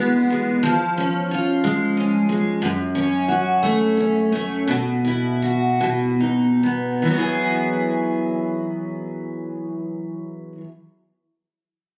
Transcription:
steel-string acoustic guitar
Already playing: E3 G#3 B3 F#4
0.30 G#3
0.63 F3
0.98 C#4
1.31 F4
1.64 G#3
1.97 C#4
2.29 G#3
2.62 F#2
2.95 C#4
3.28 F#4
3.63 A3
3.97 C#4
4.32 A3
4.68 B2
5.05 E4
5.42 F#4
5.81 B2
6.20 D#4
6.63 B3
7.02 E3
7.07 F#3 B3
7.15 E4 G#4

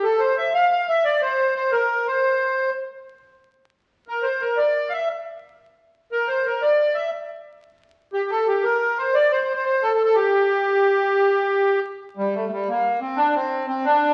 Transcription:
accordion
0.03 A4
0.19 C5
0.38 E5
0.54 F5
0.71 F5
0.89 E5
1.05 D5
1.22 C5
1.56 C5
1.72 A#4
2.07 C5
4.08 A#4
4.23 C5
4.41 A#4
4.57 D5
4.89 E5 F5
6.12 A#4
6.28 C5
6.45 A#4
6.62 D5
6.94 E5
8.13 G4
8.30 A4
8.47 G4
8.63 A#4
8.98 C5
9.15 D5
9.32 C5
9.43 C5
9.55 C5
9.66 C5
9.82 A4
9.94 A4
10.04 A4
10.15 G4
12.17 G3
12.34 A3
12.47 A3
12.51 G3
12.69 A#3
13.01 C4
13.17 D4
13.35 C4
13.68 C4
13.85 D4

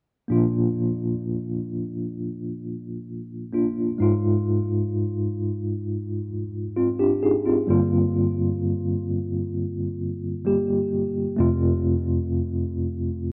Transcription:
tine electric piano
0.28 A#2 F3 A#3 D4 F4
3.53 A#3 D4 F4
3.98 G#2 G#3 D#4 F4
6.77 C4 F4
7.00 D4 G4
7.23 D#4 G#4
7.46 C4 F4
7.67 G2 D3 G3 A#3 F4
10.45 G3 A#3 G4
11.36 F2 C3 A3 C4 F4

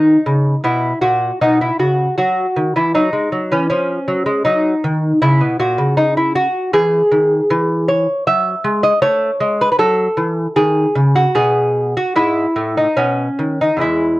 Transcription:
lute
Already playing: D#3 D#4
0.26 C#3
0.64 B2 E4
1.01 A#2 F#4
1.41 B2 D#4
1.61 E4
1.79 C#3 F#4
2.18 F#3 F#4
2.57 D#3
2.76 E3 E4
2.95 F#3 D#4
3.13 G#3
3.32 F#3
3.52 E3 C#4
3.70 F3 C#4
4.08 F#3
4.26 G#3
4.45 F#3 D#4
4.84 D#3
5.22 C#3 E4
5.41 B2
5.59 A#2 F#4
5.78 C#3
5.97 D#4
6.17 E4
6.35 F#4
6.73 E3 G#4
7.12 D#3
7.50 E3
7.88 C#5
8.27 F#3 E5
8.64 G#3
8.83 D#5
9.02 A3 C#5
9.40 G#3
9.61 B4
9.72 B4
9.79 F#3 A4
10.17 E3
10.56 D#3 G#4
10.95 C#3
11.16 F#4
11.35 B2 G#4
11.97 F#4
12.16 G#2 E4
12.56 A2
12.77 D#4
12.97 B2 C#4
13.39 D#3
13.61 D#4
13.77 E2 E3 G#3
13.81 E4

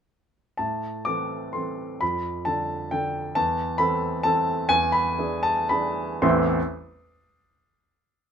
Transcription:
grand piano
0.57 A2 A5
1.05 E3 C4 A4 D6
1.53 E3 C4 A4 C6
2.01 F2 B5
2.45 D3 D4 A4 A5
2.91 D3 D4 A4 G5
3.35 E2 A5
3.78 E3 C4 A4 B5
4.23 E3 C4 A4 A5
4.69 E2 G#5
4.92 B5
5.19 E3 D4 G#4
5.43 A5
5.69 E3 D4 G#4 B5
6.22 A1 E2 E3 A3 C4 E4 C6

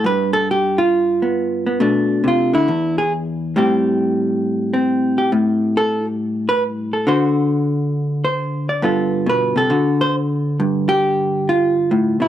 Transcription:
hollow-body jazz guitar
0.04 G2 B4
0.33 A4
0.51 G4
0.78 F4
1.22 B3
1.66 B3
1.80 B2 A3 D4
2.24 C3 F4
2.53 D3 E4
2.68 E2
2.98 G#4
3.56 A2 G3 C4 G4
4.74 C4
5.18 G4
5.32 A2
5.77 A4
6.05 G4
6.49 B4
6.93 A4
7.07 D3 F#4 C5
8.24 C5
8.69 D5
8.82 G2 B3 F4 A4
9.26 B2 B4
9.56 C3 A4
9.70 D3 F#4
10.01 C5
10.60 G2
10.89 G4
11.49 F4
11.91 A2
12.20 B2 E4

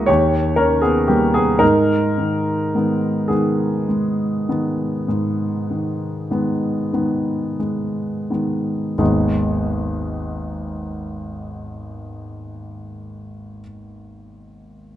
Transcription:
grand piano
Already playing: E3 G#3 A#3 F#4 G#4 D#5
0.06 D#2 G4 C#5
0.56 D#3 C#4 A#4
0.82 B3 G#4
1.08 G3 A#3 G4
1.34 B3 G#4
1.59 G#2 D#4 A#4
2.18 D#3
2.75 D#3 G#3 B3
3.28 D#3 G#3 B3 G#4
3.89 G#3
4.49 D#3 G#3 B3
5.08 G#2
5.71 D#3
6.31 D#3 G#3 B3
6.93 D#3 G#3 B3
7.60 G#3
8.30 D#3 G#3 B3
8.98 G#1 D#2 G#3 B3 D#4 G#4

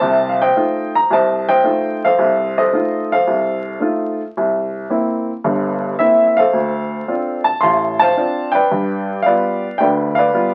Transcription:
upright piano
Already playing: C5 D#5 A5
0.01 C2 C3
0.29 F5
0.42 C5 D#5 G5
0.56 A3 D#4 F4
0.95 A#5
1.11 C2 C5 D#5 A5
1.49 C5 D#5 G5
1.64 A3 D#4 F4
2.05 A4 C5 F5
2.19 C2
2.58 A4 C5 D#5
2.73 A3 D#4 F4
3.12 A4 C5 F5
3.27 C2
3.80 A3 D#4 F4
4.37 C2
4.90 A#3 C4 E4
5.44 G1 G2
5.99 A#3 C4 E4 E5
6.27 E5
6.37 A4 C5 F5
6.53 D2
7.08 C4 D4 F4
7.44 A5
7.61 A1 A2 F5 A5 C6
7.99 C5 F5 A5
8.17 C4 D4 F4
8.52 B4 D5 G5
8.71 G2
9.22 B4 D5 F5
9.27 G3 B3 F4
9.78 D2 D3 B4 D5 G5
10.15 B4 D5 F5
10.34 G3 B3 F4

